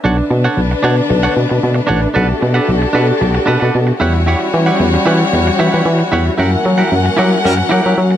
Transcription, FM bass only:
0.05 B1
0.31 B2
0.57 B1
0.84 B2
1.10 B1
1.37 B2
1.51 B2
1.63 B2
1.90 A1
2.16 B1
2.42 B2
2.69 B1
2.95 B2
3.21 B1
3.48 B2
3.62 B2
3.75 B2
4.01 E2
4.54 E3
4.80 E2
5.06 E3
5.33 E2
5.60 E3
5.74 E3
5.86 E3
6.13 E2
6.39 F#2
6.66 F#3
6.92 F#2
7.19 F#3
7.45 F#2
7.72 F#3
7.86 F#3
7.98 F#3

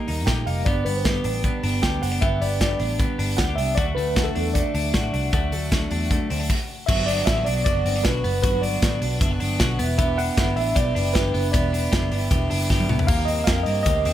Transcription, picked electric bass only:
0.09 D#2
0.27 A#2
0.47 F1
0.66 G1
0.85 G1
1.25 A1
1.64 G1
1.83 D2
2.02 F#1
2.22 G1
2.40 G1
2.80 A1
3.19 G1
3.39 D2
3.58 C2
3.77 D2
3.97 D2
4.36 E2
4.75 D2
4.94 A2
5.13 C2
5.33 D2
5.52 D2
5.91 E2
6.31 D2
6.89 G1
7.27 A1
7.47 B1
7.66 F#1
7.86 G1
8.05 B1
8.25 F#1
8.44 G1
8.83 A1
9.02 B1
9.21 F#1
9.41 G1
9.60 B1
9.79 E1
10.38 G1
10.57 A1
10.76 B1
10.96 F#1
11.16 G1
11.34 F#1
11.54 E1
11.93 F#1
12.12 G1
12.31 E1
12.51 F#1
12.70 G1
12.89 C2
13.09 D#2
13.47 F2
13.66 G2
13.86 D2
14.05 D#2

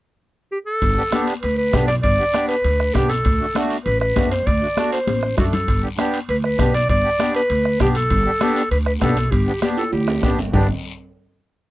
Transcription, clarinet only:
0.52 G4
0.66 A4
1.42 B4
1.58 B4
1.88 D5
2.03 D5
2.48 B4
2.94 G4
3.09 A4
3.85 B4
4.00 B4
4.31 C5
4.47 D5
4.93 C5
5.38 F#4
5.53 A4
6.30 B4
6.45 B4
6.75 D5
6.90 D5
7.36 B4
7.81 G4
7.96 A4
8.72 B4
8.87 B4
9.01 A4
9.31 G4
9.63 G4
9.78 A4
9.93 G4
10.54 D4

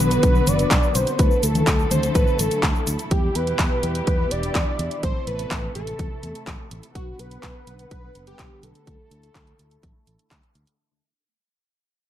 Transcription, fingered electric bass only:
0.00 B1
0.23 B1
0.47 F#1
0.71 B1
0.95 B1
1.19 D2
1.43 D2
1.67 D2
1.91 D2
2.15 A1
2.39 A1
2.63 D2
2.87 D2
3.11 E2
3.35 E2
3.59 E2
3.83 E2
4.07 E2
4.31 E1
4.55 E2
4.79 E2
5.03 A1
5.27 A1
5.51 A1
5.75 A1
5.99 E2
6.23 E2
6.47 A1
6.71 A1
6.95 B1
7.19 B1
7.43 B1
7.67 B1
7.91 B1
8.15 F#1
8.39 B1
8.63 B1
8.87 D2
9.11 D2
9.35 D2
9.59 D2
9.83 A1
10.07 A1
10.31 D2
10.55 D2

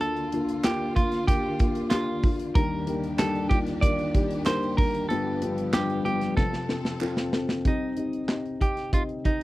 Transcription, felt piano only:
Already playing: D2 D3 A#3 D4 F4
0.34 A#3 D4 F4
0.65 A#3 D4 F4
0.97 A#3 D4 F4
1.28 A#3 D4 G4
1.60 A#3 D4 F4
1.92 A#3 D4 G4
2.24 A#3 D4 F4
2.56 D#2 D#3 G3 A#3 D4 D#4 A#4
2.87 G3 A#3 D4 D#4 A#4
3.19 G3 A#3 D4 D#4 G4
3.51 G3 A#3 D4 D#4 F4
3.82 G3 A#3 D4 D#4 A#4
4.14 G3 A#3 D4 D#4 G4
4.46 G3 A#3 D4 D#4 A#4
4.78 G3 A#3 D4 D#4 A#4
5.10 G1 G2 G3 B3 D4 F4 B4
5.42 G3 B3 D4 F4 B4
5.74 G3 B3 D4 F4 B4
6.05 G3 B3 D4 F4 B4
6.38 F1 F2 C4 F4 A4
6.69 C4 F4 A4
7.01 C4 F4 A4
7.33 C4 F4 A4
7.65 C2 C3 C4 D#4 G4 D#5
7.97 C4 D#4 G4 D#5
8.29 C4 D#4 G4 D#5
8.60 C4 D#4 G4 D#5
8.93 C4 D#4 G4 D#5
9.25 C4 D#4 G4 D#5

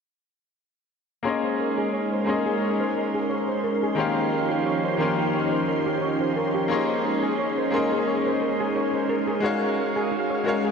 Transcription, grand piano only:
1.23 A#3 C#4 G#4 C6
1.28 D#5
2.24 A#3 G#4 C6
2.29 C#4 D#5
3.95 D#3 A#3 G4 C6
3.99 C#4 F5
4.97 D#3 A#3 G4 C6
5.01 C#4 F5
6.68 A#3 G#4 C6
6.72 C#4 D#5
7.70 A#3 G#4 C6
7.75 C#4 D#5
9.40 G#3 F#4 A#4
9.44 C#5 F5
10.44 G#3 F#4 A#4
10.48 C#5 F5

